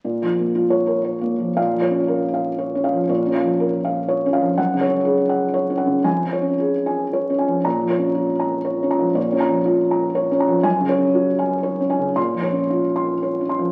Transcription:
<<
  \new Staff \with { instrumentName = "Felt piano" } { \time 3/4 \key bes \minor \tempo 4 = 119 << { r4 \tuplet 3/2 { r8 des''4 } r4 | f''4 r2 | r2. | ges''4 r2 |
aes''4 r2 | bes''4 r2 | r2. | aes''4 r2 |
c'''4 r2 | } \\ { r2. | r8 des''8 bes'8 f''8 des''8 f''8 | des''8 f''8 bes'8 f''8 des''8 f''8 | r8 des''8 aes'8 ges''8 des''8 ges''8 |
r8 des''8 aes'8 aes''8 des''8 aes''8 | r8 des''8 f'8 bes''8 des''8 bes''8 | des''8 bes''8 f'8 bes''8 des''8 bes''8 | r8 des''8 ges'8 aes''8 des''8 aes''8 |
r8 des''8 f'8 c'''8 des''8 c'''8 | } >> }
  \new Staff \with { instrumentName = "Felt piano" } { \clef bass \time 3/4 \key bes \minor \tuplet 3/2 { bes,8 f8 bes8 f'4 bes'8 des''8 bes8 f8 } | \tuplet 3/2 { bes,8 f8 des'8 } r4 \tuplet 3/2 { r8 des'8 f8 } | \tuplet 3/2 { bes,8 des'8 f8 } r4 \tuplet 3/2 { r8 des'8 f8 } | \tuplet 3/2 { ges,8 des8 des'8 } r4 \tuplet 3/2 { r8 des'8 des8 } |
\tuplet 3/2 { f,8 f8 des'8 } r4 \tuplet 3/2 { r8 des'8 f8 } | \tuplet 3/2 { bes,8 f8 des'8 } r4 \tuplet 3/2 { r8 des'8 f8 } | \tuplet 3/2 { bes,8 des'8 f8 } r4 \tuplet 3/2 { r8 des'8 f8 } | \tuplet 3/2 { ges,8 des8 des'8 } r4 \tuplet 3/2 { r8 des'8 des8 } |
\tuplet 3/2 { bes,8 f8 des'8 } r4 \tuplet 3/2 { r8 des'8 f8 } | }
>>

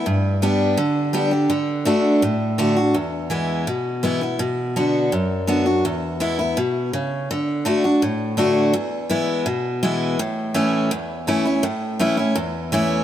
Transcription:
\new Staff \with { instrumentName = "Steel-string acoustic guitar" } { \time 4/4 \key a \major \tempo 4 = 166 << { r4 <g b d' g'>4 r4 <g b d' g'>8 <d' g'>8 | r4 <d a d' fis'>4 r4 <d a d' fis'>8 <d' fis'>8 | r4 <e gis b e'>4 r4 <e gis b e'>8 <b e'>8 | r4 <d b d' fis'>4 r4 <d b d' fis'>8 <d' fis'>8 |
r4 <e gis b e'>8 <b e'>8 r2 | r4 <d a d' fis'>8 <d' fis'>8 r4 <d a d' fis'>4 | r4 <e gis b e'>4 r4 <e gis b e'>4 | r4 <e a cis' e'>4 r4 <e a cis' e'>8 <cis' e'>8 |
r4 <e a cis' e'>8 <cis' e'>8 r4 <e a cis' e'>4 | } \\ { g,2 d2 | d2 a,2 | e,2 b,2 | b,2 fis,2 |
e,2 b,4 cis4 | d2 a,2 | e,2 b,2 | a,2 e,2 |
a,2 e,2 | } >> }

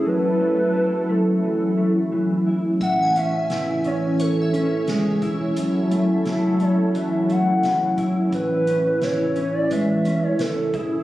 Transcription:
<<
  \new Staff \with { instrumentName = "Synth bell" } { \time 4/4 \key a \major \tempo 4 = 87 r1 | e''16 gis''4.~ gis''16 cis''16 e''4.~ e''16~ | e''8. r2. r16 | r1 | }
  \new Staff \with { instrumentName = "Soft synth lead" } { \time 4/4 \key a \major b'4. a'2 r8 | fis''8 e''4 cis''8 a'4 gis'8. r16 | r8 e''4 cis''8 e''8 fis''4 r8 | b'4 cis''8. d''16 e''8. cis''16 a'8 gis'8 | }
  \new Staff \with { instrumentName = "Analog synth pad" } { \time 4/4 \key a \major <fis cis' e' a'>1 | e1 | <fis e' a'>1 | e1 | }
  \new Staff \with { instrumentName = "Clean electric guitar" } { \time 4/4 \key a \major fis,8 a8 e'8 a8 e8 a8 e8 e'8 | a,8 cis'8 e'8 cis'4 cis'8 gis8 e'8 | fis,8 a8 e'8 a8 e8 a8 e8 e'8 | a,8 cis'8 e'8 cis'8 gis8 cis'4 e'8 | }
  \new Staff \with { instrumentName = "Sub bass" } { \clef bass \time 4/4 \key a \major r1 | a,,2~ a,,8 a,,4 e,,8 | fis,,8. gis,,8. fis,,4 fis,,4 gis,,8 | a,,2~ a,,8 a,,4 e,,8 | }
  \new DrumStaff \with { instrumentName = "Drums" } \drummode { \time 4/4 r4 r4 r4 r4 | <hh bd>8 hh8 <hh sn>8 hh8 hh8 hh8 <hh sn>8 <hh bd>8 | hh8 hh8 <hh sn>8 hh8 hh8 hh8 <hh sn>8 <hh bd>8 | <hh bd>8 hh8 <hh sn>8 hh8 hh8 hh8 <hh sn>8 <hh bd>8 | }
>>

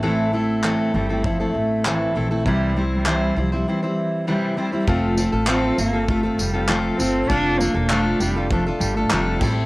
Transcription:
<<
  \new Staff \with { instrumentName = "Steel-string acoustic guitar" } { \time 4/4 \key f \major \tempo 4 = 99 <a, e a c' e' a'>8 <a c' e' a'>8 <a, e a c' e' a'>8 <a c' e' a'>16 <a c' e' a'>16 <a c' e' a'>16 <a c' e' a'>8. <a, e a c' e' a'>8 <a c' e' a'>16 <a c' e' a'>16 | <c e g c' e' c''>8 <g c' e' c''>8 <c e g c' e' c''>8 <g c' e' c''>16 <g c' e' c''>16 <g c' e' c''>16 <g c' e' c''>8. <c e g c' e' c''>8 <g c' e' c''>16 <g c' e' c''>16 | <f a c' f' a'>8 <a c' f' a'>16 <c' f' a'>16 <f a c' f' a'>8 <a c' f' a'>16 <c' f' a'>16 <a c' f' a'>16 <c' f' a'>8 <c' f' a'>16 <f a c' f' a'>8 <a c' f' a'>8 | <f a d' f' a'>8 <a d' f' a'>16 <d' f' a'>16 <f a d' f' a'>8 <a d' f' a'>16 <d' f' a'>16 <a d' f' a'>16 <d' f' a'>8 <d' f' a'>16 <f a d' f' a'>8 <a c' e' a'>8 | }
  \new Staff \with { instrumentName = "Cello" } { \clef bass \time 4/4 \key f \major a8 a4 g8 f8 a8 e8. r16 | g8 g16 g8. f8 e4 g8 g8 | a4 c'8 bes8 a8 g8 a8 c'8 | d'8 bes8 a8 g8 f8 g16 a16 g8 g8 | }
  \new Staff \with { instrumentName = "Upright bass" } { \clef bass \time 4/4 \key f \major a,,4. g,,4 a,,4 bes,,8 | c,4. c,8 r2 | f,,8. a,,8. g,,4 f,,4 g,,8 | f,,8. e,,8. f,,4 g,,8 f,,8 a,,8 | }
  \new DrumStaff \with { instrumentName = "Drums" } \drummode { \time 4/4 r4 hc4 bd4 hc4 | bd4 hc4 r4 r4 | bd8 tamb8 hc8 tamb8 bd8 tamb8 hc8 tamb8 | bd8 tamb8 hc8 tamb8 bd8 tamb8 hc8 <cymc bd tamb>8 | }
>>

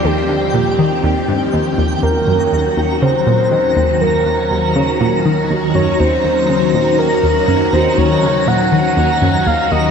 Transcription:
<<
  \new Staff \with { instrumentName = "Synth texture" } { \time 4/4 \key ees \major \tempo 4 = 121 g''1 | \key ees \dorian bes''1~ | bes''1~ | bes''1~ |
bes''1 | }
  \new Staff \with { instrumentName = "Soft synth lead" } { \time 4/4 \key ees \major g'2. r4 | \key ees \dorian bes'4. r8 c''2 | bes'2 r4. des''8 | c''2 bes'4. c''8 |
des''4 ges''2 f''8 ees''8 | }
  \new Staff \with { instrumentName = "String machine" } { \clef bass \time 4/4 \key ees \major <ees, ees f c' g'>1 | \key ees \dorian <ees, ees ges des' ges'>1~ | <ees, ees ges des' ges'>1~ | <ees, ees ges des' ges'>1~ |
<ees, ees ges des' ges'>1 | }
  \new Staff \with { instrumentName = "Synth arpeggio sound" } { \clef bass \time 4/4 \key ees \major ees,8 d8 bes,8 ees8 ees,8 g,8 ees,8 ees,8 | \key ees \dorian ees,8 ges,8 ees,8 ees,8 des8 bes,8 ees8 ees,8 | ges,8 ees,8 ees,8 des8 bes,8 ees8 ees,8 ges,8 | ees,8 ees,8 des8 bes,8 ees8 ees,8 ges,8 ees,8 |
ees,8 des8 bes,8 ees8 ees,8 ges,8 ees,8 ees,8 | }
>>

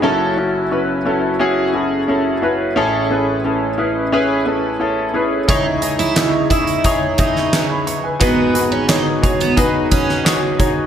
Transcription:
<<
  \new Staff \with { instrumentName = "Grand piano" } { \time 4/4 \key cis \minor \tempo 4 = 88 << { r1 | r1 | r2. <b' gis''>16 <dis'' b''>16 <e'' cis'''>16 <b' gis''>16~ | <b' gis''>16 r2. r8. | } \\ { <cis' e' fis' a'>8 <cis' e' fis' a'>8 <cis' e' fis' b'>8 <cis' e' fis' a'>8 <cis' e' fis' gis'>8 <cis' e' fis' a'>8 <cis' e' fis' a'>8 <cis' e' fis' b'>8 | <cis' e' gis' a'>8 <cis' e' gis' b'>8 <cis' e' gis' a'>8 <cis' e' gis' b'>8 <cis' e' gis' b'>8 <cis' e' gis' a'>8 <cis' e' gis' a'>8 <cis' e' gis' b'>8 | <dis' e' gis' cis''>8 <dis' e' gis' dis''>8 <dis' e' gis' e''>8 <dis' e' gis' e''>8 <dis' e' gis' cis''>8 <dis' e' gis' e''>8 r4 | <dis' fis' gis' b'>8 <dis' fis' gis' b'>8 <dis' fis' gis' cis''>8 <dis' fis' gis' cis''>8 <dis' fis' gis' b'>8 <dis' fis' gis' cis''>8 <dis' fis' gis' cis''>8 <dis' fis' gis' cis''>8 | } >> }
  \new Staff \with { instrumentName = "Grand piano" } { \clef bass \time 4/4 \key cis \minor <fis,, fis,>1 | <a,, a,>1 | <cis, cis>1 | <gis,, gis,>1 | }
  \new Staff \with { instrumentName = "Steel-string acoustic guitar" } { \time 4/4 \key cis \minor r1 | r1 | dis'16 r8 e'16 r8 e'8 r8 dis'8. r8. | b8 r16 cis'16 dis'16 r8 b16 r8 cis'8 r4 | }
  \new DrumStaff \with { instrumentName = "Drums" } \drummode { \time 4/4 r4 r4 r4 r4 | r4 r4 r4 r4 | <hh bd>8 hh16 hh16 <hc hh sn>8 <hh bd>16 hh16 <hh bd>8 <hh bd>16 sn16 <hc hh sn>8 hh8 | <hh bd>8 hh8 <hc hh sn>8 <hh bd>16 hh16 <hh bd>8 <hh bd>16 sn16 <hc hh sn>8 <hh bd>8 | }
>>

